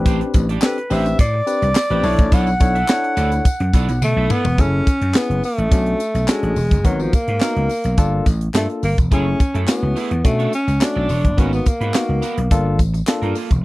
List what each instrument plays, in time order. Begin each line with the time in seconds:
Already playing: slap bass A1, tine electric piano C4 D4 G4 B4
0.06 clean electric guitar D4 G4 C5, kick, closed hi-hat, tambourine
0.21 muted clean electric guitar stroke, closed hi-hat
0.34 slap bass A1, muted clean electric guitar stroke, kick, closed hi-hat, tambourine
0.49 clean electric guitar D4 G4 D5, closed hi-hat
0.61 tine electric piano C4 D4 G4 A4, alto saxophone B4, snare, clap, tambourine
0.78 muted clean electric guitar stroke, closed hi-hat
0.90 slap bass A1, tine electric piano C4 D4 G4 B4, clean electric guitar D4 G4 C5, alto saxophone E5, open hi-hat, tambourine
1.06 muted clean electric guitar stroke, closed hi-hat, tambourine
1.19 slap bass A2, alto saxophone D5, muted clean electric guitar stroke, kick, closed hi-hat, tambourine
1.34 muted clean electric guitar stroke
1.46 tine electric piano C4 D4 G4 B4, closed hi-hat, tambourine
1.62 slap bass C2, muted clean electric guitar stroke, closed hi-hat, tambourine
1.75 muted clean electric guitar stroke, snare, clap, tambourine
1.90 slap bass A1, tine electric piano C4 D4 G4 B4, clean electric guitar D4 G4 D5, closed hi-hat
2.03 slap bass B1, tine electric piano D4 E4 A4 C#5, clean electric guitar E4 A4 D5, open hi-hat, tambourine
2.19 slap bass A1, kick, closed hi-hat, tambourine
2.32 slap bass B1, clean electric guitar E4 A4 D5, alto saxophone F#5, kick, closed hi-hat, tambourine
2.47 muted clean electric guitar stroke, tambourine
2.60 slap bass B1, tine electric piano D4 E4 A4 C#5, muted clean electric guitar stroke, kick, closed hi-hat, tambourine
2.75 clean electric guitar E4 A4 E5, closed hi-hat
2.88 tine electric piano D4 E4 A4 C#5, snare, clap, tambourine
3.04 muted clean electric guitar stroke, closed hi-hat
3.16 slap bass D2, clean electric guitar E4 A4 D5, closed hi-hat, tambourine
3.32 muted clean electric guitar stroke, closed hi-hat, tambourine
3.45 muted clean electric guitar stroke, kick, closed hi-hat, tambourine
3.60 slap bass F#2, muted clean electric guitar stroke, closed hi-hat
3.73 slap bass B1, clean electric guitar E4 A4 D5, kick, closed hi-hat, tambourine
3.88 slap bass B1, muted clean electric guitar stroke, closed hi-hat, tambourine
4.01 slap bass B2, alto saxophone A3, muted clean electric guitar stroke, high tom, tambourine
4.16 slap bass B1, clean electric guitar E4 A4 E5
4.30 alto saxophone B3, clean electric guitar E4 A4 D5, mid tom, tambourine
4.45 slap bass E1, muted clean electric guitar stroke, floor tom, tambourine
4.58 slap bass F#1, tine electric piano C#4 E4 G#4 A4, alto saxophone C#4, kick, closed hi-hat, tambourine
4.87 kick, closed hi-hat, tambourine
5.02 slap bass F#2, closed hi-hat
5.14 alto saxophone B3, tine electric piano C#4 E4 G#4 B4, snare, clap, closed hi-hat, tambourine
5.30 slap bass F#1, closed hi-hat
5.44 alto saxophone A3, open hi-hat, tambourine
5.58 slap bass A1, closed hi-hat
5.71 slap bass B1, tine electric piano C#4 D4 F#4 A4, kick, closed hi-hat, tambourine
5.86 closed hi-hat
6.00 closed hi-hat, tambourine
6.14 slap bass B1, closed hi-hat, tambourine
6.28 alto saxophone G#3, tine electric piano C#4 D4 F#4 A4, snare, clap, closed hi-hat, tambourine
6.43 slap bass A1, closed hi-hat
6.56 slap bass E1, open hi-hat, tambourine
6.71 slap bass F#1, kick, closed hi-hat, tambourine
6.84 slap bass G#1, alto saxophone F#3, tine electric piano B3 D#4 F#4 A#4, kick, closed hi-hat, tambourine
7.00 alto saxophone F3, tambourine
7.13 alto saxophone A#3, kick, closed hi-hat, tambourine
7.28 slap bass G#2, closed hi-hat
7.41 tine electric piano B3 D#4 F#4 A#4, snare, clap, closed hi-hat, tambourine
7.56 slap bass C#2, closed hi-hat
7.69 open hi-hat, tambourine
7.84 slap bass B1, closed hi-hat, tambourine
7.97 slap bass G1, tine electric piano A#3 D4 F4 A4, kick, closed hi-hat, tambourine
8.26 slap bass A1, kick, closed hi-hat, tambourine
8.41 closed hi-hat
8.54 slap bass G2, alto saxophone A3, tine electric piano A#3 D4 F4 A4, snare, clap, closed hi-hat, tambourine
8.70 closed hi-hat
8.83 slap bass G1, alto saxophone A#3, open hi-hat, tambourine
8.98 slap bass E1, kick, closed hi-hat, tambourine
9.11 slap bass F#1, clean electric guitar A3 E4 G#4, tine electric piano A3 C#4 E4 G#4, alto saxophone C#4, kick, closed hi-hat, tambourine
9.26 muted clean electric guitar stroke
9.39 muted clean electric guitar stroke, kick, closed hi-hat, tambourine
9.54 slap bass F#2, clean electric guitar A3 E4 A4, closed hi-hat
9.67 tine electric piano A3 C#4 E4 F#4, alto saxophone B3, snare, clap, closed hi-hat, tambourine
9.83 slap bass C#2, muted clean electric guitar stroke
9.96 clean electric guitar A3 E4 G#4, open hi-hat, tambourine
10.11 slap bass E2, muted clean electric guitar stroke, closed hi-hat
10.24 slap bass B2, tine electric piano A3 C#4 D4 F#4, alto saxophone A3, muted clean electric guitar stroke, kick, closed hi-hat, tambourine
10.39 clean electric guitar D4 A4 C#5, closed hi-hat
10.53 alto saxophone C#4, muted clean electric guitar stroke, closed hi-hat, tambourine
10.67 slap bass C#2, muted clean electric guitar stroke, closed hi-hat, tambourine
10.80 tine electric piano A3 C#4 D4 F#4, alto saxophone D4, muted clean electric guitar stroke, snare, clap, closed hi-hat, tambourine
10.96 slap bass B1, clean electric guitar D4 A4 D5
11.09 slap bass E1, clean electric guitar D4 A4 C#5, open hi-hat, tambourine
11.24 slap bass F#1, muted clean electric guitar stroke, kick, closed hi-hat
11.37 slap bass G#1, tine electric piano A#3 B3 D#4 F#4, clean electric guitar B3 F#4 A#4, alto saxophone C#4, kick, closed hi-hat, tambourine
11.53 alto saxophone B3, muted clean electric guitar stroke, tambourine
11.66 alto saxophone A#3, muted clean electric guitar stroke, kick, closed hi-hat, tambourine
11.81 slap bass G#2, clean electric guitar B3 F#4 B4, closed hi-hat
11.94 tine electric piano A#3 B3 D#4 F#4, snare, clap, closed hi-hat, tambourine
12.09 slap bass C#2, muted clean electric guitar stroke
12.22 clean electric guitar B3 F#4 A#4, closed hi-hat, tambourine
12.38 slap bass B1, muted clean electric guitar stroke, closed hi-hat
12.51 slap bass G1, tine electric piano A#3 D4 F4 A4, muted clean electric guitar stroke, kick, closed hi-hat, tambourine
12.65 muted clean electric guitar stroke
12.79 slap bass A1, kick, closed hi-hat, tambourine
12.94 muted clean electric guitar stroke, closed hi-hat, tambourine
13.07 tine electric piano A#3 D4 F4 A4, muted clean electric guitar stroke, snare, clap, closed hi-hat, tambourine
13.22 slap bass G2, clean electric guitar A#3 F4 A#4, closed hi-hat
13.35 clean electric guitar A#3 F4 A4, open hi-hat, tambourine
13.50 slap bass E1, muted clean electric guitar stroke, kick, closed hi-hat, tambourine